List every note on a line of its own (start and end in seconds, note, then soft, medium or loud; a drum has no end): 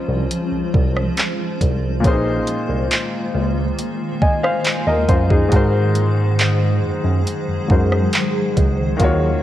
0.00 2.01 F3 medium
0.00 1.99 G#3 medium
0.00 2.00 G#3 medium
0.00 1.98 C#4 medium
0.00 2.01 C#4 medium
0.00 2.00 D#4 medium
0.00 2.01 F4 medium
0.00 5.48 F4 medium
0.00 2.02 C5 medium
0.00 8.96 C5 medium
0.09 0.25 C2 medium
0.31 closed hi-hat medium
0.52 0.61 C2 soft
0.74 1.08 C2 medium
0.74 kick medium
0.96 cross-stick medium
1.17 clap loud
1.17 closed hi-hat medium
1.61 2.04 C2 medium
1.61 kick medium
1.61 closed hi-hat medium
2.00 5.46 A#2 medium
2.00 9.43 D#3 medium
2.00 8.96 G#3 medium
2.00 5.47 A#3 medium
2.00 5.48 A#3 medium
2.00 2.10 C#4 medium
2.04 2.38 A#1 loud
2.04 4.18 G#4 medium
2.04 4.19 C5 medium
2.04 kick loud
2.04 closed hi-hat medium
2.10 4.21 D#4 medium
2.47 closed hi-hat medium
2.69 2.86 C2 medium
2.91 clap loud
2.91 closed hi-hat medium
3.35 3.69 C#2 medium
3.79 closed hi-hat medium
4.22 4.43 D#5 soft
4.22 4.42 G#5 medium
4.22 kick medium
4.43 4.85 C5 medium
4.43 4.85 F5 medium
4.43 cross-stick medium
4.64 clap loud
4.64 closed hi-hat medium
4.87 5.04 D#2 medium
4.87 5.08 A#4 medium
4.87 5.08 D#5 medium
5.09 5.43 F#2 medium
5.09 5.30 F4 medium
5.09 5.29 C5 medium
5.09 kick medium
5.09 closed hi-hat medium
5.30 5.72 D#4 medium
5.30 5.72 G#4 medium
5.30 kick medium
5.49 7.64 G#2 medium
5.49 6.78 G#2 loud
5.49 9.43 F#3 medium
5.49 7.65 G#3 medium
5.49 7.66 F#4 medium
5.49 9.43 G#4 medium
5.49 kick loud
5.49 closed hi-hat medium
5.54 7.66 A#4 medium
5.54 7.67 C5 medium
5.95 closed hi-hat medium
6.39 clap loud
6.39 closed hi-hat medium
7.05 7.21 F#2 medium
7.27 closed hi-hat medium
7.48 7.57 F#2 soft
7.68 8.04 F#2 medium
7.68 8.99 G#2 medium
7.68 9.00 G#3 medium
7.68 9.00 F#4 medium
7.68 9.00 A#4 medium
7.68 9.01 C5 medium
7.68 kick medium
7.92 cross-stick medium
8.13 clap loud
8.13 closed hi-hat medium
8.57 8.90 C#2 medium
8.57 kick medium
8.57 closed hi-hat medium
8.97 9.34 D#2 loud
8.97 9.43 D#3 medium
8.97 9.43 A#3 medium
8.97 9.43 F4 medium
8.97 kick loud
8.97 closed hi-hat medium
9.02 9.43 F#4 medium
9.02 9.43 C#5 medium